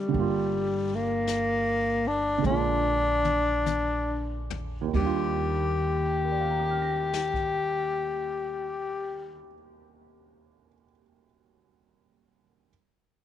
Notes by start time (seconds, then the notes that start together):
Already playing: D3 G3 A3 C4 F#4
0.08 D3 G3
0.14 G1 A#3, brush sweep
0.20 F4
0.95 A#3
1.27 brush sweep, snare, hi-hat pedal
2.07 D4
2.38 D3 G#3
2.44 A#1 A#3 D4, high tom
2.50 F4
3.25 high tom
3.66 hi-hat pedal, high tom
4.50 floor tom
4.81 D#2
4.87 D#3
4.93 D#2 G3 G4, kick, ride
5.00 D4
5.06 F4
6.25 A#4
6.32 D5
6.40 F5
6.50 A#5
6.60 D6
6.71 F6
6.82 A#6
7.13 snare
7.34 kick